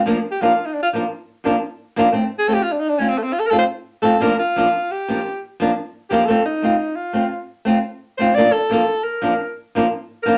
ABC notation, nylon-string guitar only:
X:1
M:12/8
L:1/8
Q:3/8=116
K:Bb
V:1 name="Nylon-string guitar"
[F,B,DF] z [F,B,DF] z2 [F,B,DF] z2 [F,B,DF] z2 [F,B,DF] | [A,C] z [A,CF] z2 [A,CF] z2 [A,CF] z2 [A,CF] | [F,B,DF] z [F,B,DF] z2 [F,B,DF] z2 [F,B,DF] z2 [F,B,DF] | [A,CF] z [A,CF] z2 [A,CF] z2 [A,CF] z2 [A,CF] |
[F,B,DF] z [F,B,DF] z2 [F,B,DF] z2 [F,B,DF] z2 [F,B,DF] |]